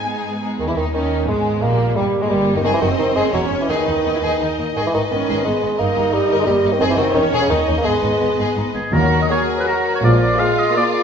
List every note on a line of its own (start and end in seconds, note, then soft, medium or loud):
0.00 0.19 G#2 soft
0.00 0.41 G#5 medium
0.04 0.40 G#3 soft
0.04 0.41 B3 soft
0.04 0.41 D#4 soft
0.04 0.41 G#4 soft
0.23 0.56 G#2 soft
0.42 0.59 G#3 soft
0.42 0.59 B3 soft
0.42 0.58 D#4 soft
0.42 0.60 G#4 soft
0.59 0.68 D#2 medium
0.59 0.68 D#3 medium
0.59 0.68 D#4 medium
0.59 0.63 D#4 medium
0.67 0.77 E2 soft
0.67 0.76 E3 soft
0.67 0.71 E4 soft
0.67 0.77 E4 soft
0.76 0.93 D#2 soft
0.76 0.93 D#2 medium
0.76 0.85 D#3 medium
0.76 0.92 D#4 soft
0.76 0.93 D#4 soft
0.94 1.28 D#2 soft
0.94 1.28 D#2 medium
0.94 1.28 D#3 medium
0.94 1.27 C#4 medium
0.94 1.28 D#4 soft
1.28 1.63 G#1 medium
1.28 1.63 G#2 medium
1.28 1.62 G#3 medium
1.28 1.63 G#3 medium
1.28 1.62 G#3 medium
1.28 1.63 B3 soft
1.62 1.96 A#1 medium
1.62 1.96 A#2 medium
1.62 1.96 G3 soft
1.62 1.95 A#3 medium
1.62 1.97 A#3 medium
1.62 1.96 A#3 medium
1.96 2.04 G1 medium
1.96 2.04 G2 medium
1.96 2.21 G3 medium
1.96 2.24 G3 medium
1.96 2.04 G3 medium
1.96 2.63 A#3 medium
2.20 2.30 G#2 medium
2.20 2.29 G#3 medium
2.20 2.30 G#3 medium
2.20 2.29 G#3 medium
2.29 2.56 G1 medium
2.29 2.56 G2 medium
2.29 2.55 G3 medium
2.29 2.56 G3 medium
2.55 2.64 D#2 medium
2.55 2.63 D#3 medium
2.55 2.64 D#4 medium
2.55 2.65 D#4 soft
2.63 2.72 F#1 medium
2.63 2.71 F#2 medium
2.63 2.73 D#3 medium
2.63 3.34 C4 medium
2.63 2.81 G#4 medium
2.63 3.30 C5 medium
2.63 3.29 D#5 medium
2.74 2.78 E3 medium
2.81 2.89 F#1 medium
2.81 2.88 F#2 soft
2.81 2.89 D#3 medium
2.81 2.89 F#4 soft
2.98 3.06 F#1 soft
2.98 3.05 F#2 soft
2.98 3.17 D#3 medium
2.98 3.06 D#4 soft
3.16 3.23 F#1 medium
3.16 3.23 F#2 medium
3.16 3.33 G#3 medium
3.16 3.32 G#4 medium
3.32 3.41 E1 soft
3.32 3.40 E2 soft
3.32 3.46 F#3 medium
3.32 3.68 C#4 medium
3.32 3.40 E4 soft
3.32 3.69 C#5 soft
3.51 3.59 E1 soft
3.51 3.58 E2 soft
3.51 3.58 C#4 soft
3.61 3.69 E3 soft
3.68 3.76 D#2 medium
3.68 4.57 D#3 medium
3.68 4.01 D#4 medium
3.68 3.86 G#4 medium
3.68 4.41 B4 soft
3.68 5.75 D#5 medium
3.86 3.94 D#2 soft
3.86 3.94 D#4 soft
4.04 4.11 D#2 soft
4.04 4.12 D#2 soft
4.04 4.12 B3 soft
4.04 4.13 D#4 medium
4.15 4.19 E4 medium
4.21 4.29 D#2 soft
4.21 4.30 D#2 medium
4.21 4.39 D#4 soft
4.21 4.39 G#4 medium
4.40 4.48 D#2 soft
4.40 4.75 D#4 soft
4.40 4.48 D#4 soft
4.40 4.59 A#4 soft
4.58 4.65 D#2 soft
4.58 4.66 A#3 soft
4.76 4.84 G#1 medium
4.76 4.83 G#2 medium
4.76 4.80 D#3 medium
4.76 4.93 G#4 medium
4.76 5.75 B4 soft
4.87 4.90 E3 medium
4.93 5.02 G#1 soft
4.93 5.01 G#2 soft
4.93 5.02 D#3 medium
4.93 5.00 D#4 soft
5.11 5.19 G#1 soft
5.11 5.18 G#2 soft
5.11 5.46 D#3 medium
5.11 5.18 B3 soft
5.11 5.43 C#4 medium
5.28 5.36 G#1 soft
5.28 5.35 G#2 medium
5.28 5.44 G#4 medium
5.45 5.53 G#1 soft
5.45 5.52 G#2 soft
5.45 5.80 G#3 medium
5.45 5.79 B3 soft
5.45 5.52 D#4 soft
5.61 5.70 G#1 soft
5.61 5.69 G#2 soft
5.61 5.68 B3 soft
5.78 5.87 G1 medium
5.78 5.86 G2 medium
5.78 6.14 A#3 medium
5.78 6.45 D#4 medium
5.78 6.30 A#4 medium
5.78 7.12 D#5 medium
5.96 6.03 G1 soft
5.96 6.03 G2 soft
5.96 6.03 G4 soft
6.12 6.20 G1 soft
6.12 6.19 G2 soft
6.12 6.38 G3 medium
6.12 6.20 D#4 soft
6.30 6.37 G1 medium
6.30 6.37 G2 medium
6.30 6.46 A#4 medium
6.39 6.46 G#3 medium
6.46 6.54 G1 soft
6.46 6.53 G2 soft
6.46 6.74 G3 medium
6.46 6.80 A#3 medium
6.46 6.54 G4 soft
6.63 6.70 G1 soft
6.63 6.70 G2 soft
6.63 6.71 D#4 medium
6.72 6.80 D#3 medium
6.80 6.87 F#1 medium
6.80 6.87 F#2 medium
6.80 6.84 D#3 medium
6.80 7.14 C4 medium
6.80 6.96 G#4 medium
6.80 7.14 C5 medium
6.90 6.97 E3 medium
6.96 7.04 F#1 medium
6.96 7.03 F#2 medium
6.96 7.13 D#3 medium
6.96 7.04 F#4 soft
7.14 7.21 E1 medium
7.14 7.21 E2 medium
7.14 7.26 D#3 medium
7.14 7.49 C#4 medium
7.14 7.22 C#4 soft
7.14 7.50 C#5 medium
7.14 7.86 C#5 medium
7.32 7.39 E1 medium
7.32 7.39 E2 medium
7.32 7.48 G#4 medium
7.41 7.45 C#3 medium
7.49 7.56 D#2 medium
7.49 7.57 D#2 soft
7.49 7.62 D#3 medium
7.49 7.86 D#4 medium
7.49 7.57 D#4 medium
7.49 8.73 D#5 medium
7.67 7.74 D#2 soft
7.67 7.75 D#2 medium
7.67 7.74 C#4 medium
7.78 7.87 A#3 medium
7.83 7.92 G#1 medium
7.83 7.92 G#2 medium
7.83 8.75 G#3 medium
7.83 8.74 B3 medium
7.83 8.01 G#4 medium
7.83 8.73 B4 soft
8.02 8.10 G#1 soft
8.02 8.10 G#2 soft
8.02 8.10 D#4 soft
8.20 8.28 G#1 soft
8.20 8.28 G#2 soft
8.20 8.28 B3 soft
8.38 8.45 G#1 medium
8.38 8.45 G#2 medium
8.38 8.56 G#4 medium
8.57 8.64 G#1 soft
8.57 8.64 G#2 soft
8.57 8.64 D#4 soft
8.74 8.83 G#1 soft
8.74 8.82 G#2 soft
8.74 8.82 B3 soft
8.74 8.95 G#4 medium
8.74 8.92 G#4 medium
8.92 9.22 D#2 medium
8.92 9.23 D#2 medium
8.92 9.06 A#2 medium
8.92 9.44 D#3 medium
8.92 9.06 F#3 medium
8.92 10.05 F#3 medium
8.92 9.06 A#3 medium
8.92 9.06 F#4 medium
8.92 9.28 F#4 medium
8.92 9.21 A#4 medium
8.92 9.28 A#4 medium
9.20 9.30 D#5 medium
9.20 9.26 D#5 medium
9.29 9.58 A#3 medium
9.29 9.57 F#4 medium
9.29 9.58 F#4 medium
9.29 9.67 G#4 medium
9.29 10.01 A#4 medium
9.29 9.57 C#5 medium
9.29 9.43 C#5 medium
9.57 9.66 B4 medium
9.57 9.64 B4 medium
9.66 9.93 A#3 medium
9.66 10.03 F#4 medium
9.66 9.94 F#4 medium
9.66 9.94 A#4 medium
9.94 10.03 C#5 medium
9.94 9.99 C#5 medium
10.02 10.31 A#1 medium
10.02 10.15 A#2 medium
10.02 10.31 A#2 medium
10.02 10.41 F3 medium
10.02 10.15 G#3 medium
10.02 10.16 A#3 medium
10.02 11.03 F4 medium
10.02 10.16 F4 medium
10.02 10.41 A#4 medium
10.02 10.20 D5 medium
10.02 10.12 D5 medium
10.21 10.39 D5 medium
10.21 10.41 D5 medium
10.39 10.76 G#3 medium
10.39 10.66 A#3 medium
10.39 10.66 F4 medium
10.39 10.66 G#4 medium
10.39 10.75 G#4 medium
10.39 10.57 F5 medium
10.39 10.60 F5 medium
10.58 10.75 D#5 medium
10.58 10.76 D#5 medium
10.75 11.03 A#3 medium
10.75 11.02 A#3 medium
10.75 11.02 F4 medium
10.75 11.02 G#4 medium
10.75 11.03 G#4 medium
10.75 10.81 D5 medium
10.75 10.85 D5 loud
10.92 11.03 D5 medium